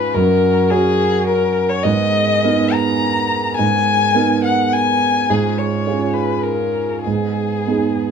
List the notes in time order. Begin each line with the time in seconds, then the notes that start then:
Already playing: G#2 C#4 F4 G#4 B4
0.14 F#2 F#4 A#4
0.71 C#4 F#4 G#4 A#4
1.27 A#4
1.70 C#5
1.83 G#2 B3 G#4 D#5
2.44 B3 D#4 A#4
2.73 A#5
3.57 G#2 G#5
4.15 B3 D#4 A#4
4.44 F#5
4.73 G#5
5.30 G#2 C#4 F4 G#4
5.58 C#5
5.87 C#4 F4 G#4
6.14 B4
6.43 A#4
7.03 G#2 B3 D#4 G#4
7.67 B3 D#4 G#4